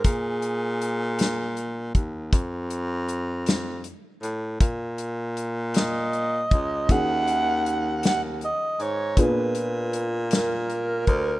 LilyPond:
<<
  \new Staff \with { instrumentName = "Alto saxophone" } { \time 6/8 \key ees \minor \tempo 4. = 53 aes'2 r4 | r2. | r4. ees''4. | ges''4. ges''8 ees''8 des''8 |
ces''4 r8 bes'4. | }
  \new Staff \with { instrumentName = "Upright piano" } { \time 6/8 \key ees \minor r2. | r2. | r2. | <des' ees' ges' aes'>2. |
<bes ces' d' aes'>2. | }
  \new Staff \with { instrumentName = "Upright piano" } { \clef bass \time 6/8 \key ees \minor r2. | r2. | r2. | ees4. r4. |
bes,4. r4. | }
  \new Staff \with { instrumentName = "Baritone saxophone" } { \clef bass \time 6/8 \key ees \minor bes,2~ bes,8 ees,8 | f,2 r8 a,8 | bes,2~ bes,8 des,8 | ees,2 r8 aes,8 |
bes,2~ bes,8 d,8 | }
  \new DrumStaff \with { instrumentName = "Drums" } \drummode { \time 6/8 <hh bd>8 hh8 hh8 <hh sn>8 hh8 <hh bd>8 | <hh bd>8 hh8 hh8 <hh sn>8 hh8 hh8 | <hh bd>8 hh8 hh8 <hh sn>8 hh8 <hh bd>8 | <hh bd>8 hh8 hh8 <hh sn>8 hh8 hh8 |
<hh bd>8 hh8 hh8 <hh sn>8 hh8 <hh bd>8 | }
>>